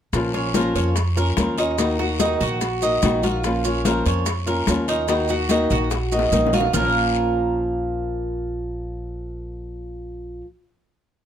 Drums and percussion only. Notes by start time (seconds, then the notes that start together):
0.13 high bongo, high conga, long guiro, maracas
0.34 high conga
0.54 high bongo, high conga, short guiro, maracas
0.75 high bongo, high conga, short guiro, maracas
0.96 high bongo, high conga, long guiro, maracas
1.16 high bongo, high conga, maracas
1.37 high bongo, low bongo, high conga, short guiro, maracas
1.58 high bongo, short guiro, maracas
1.78 high bongo, high conga, long guiro, maracas
2.00 high bongo, high conga
2.20 high bongo, high conga, short guiro, maracas
2.40 high bongo, high conga, short guiro, maracas
2.61 high bongo, high conga, long guiro, maracas
2.82 high conga, maracas
3.02 high bongo, low bongo, high conga, short guiro, maracas
3.23 high bongo, high conga, short guiro, maracas
3.44 high bongo, high conga, long guiro, maracas
3.64 high conga, maracas
3.85 high bongo, high conga, short guiro, maracas
4.06 high bongo, high conga, short guiro, maracas
4.26 high bongo, high conga, long guiro, maracas
4.47 high bongo, high conga, maracas
4.67 high bongo, low bongo, high conga, short guiro, maracas
4.88 high bongo, short guiro, maracas
5.08 high bongo, high conga, long guiro, maracas
5.28 high bongo, high conga, maracas
5.49 high bongo, high conga, short guiro, maracas
5.70 high bongo, high conga, short guiro, maracas
5.91 high bongo, high conga, long guiro, maracas
6.12 high conga, maracas
6.19 high bongo
6.32 low bongo, high conga, short guiro, maracas
6.47 low bongo
6.53 high conga, short guiro, maracas
6.61 low bongo
6.74 low bongo, low conga, long guiro, maracas